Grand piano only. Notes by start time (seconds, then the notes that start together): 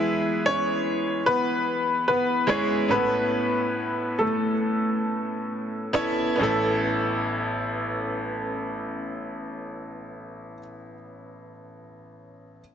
Already playing: E4 E5
0.46 C#4 C#5
1.26 B3 B4
2.08 B3 B4
2.50 C#4 C#5
2.91 B3 B4
4.19 A3 A4
6.42 A4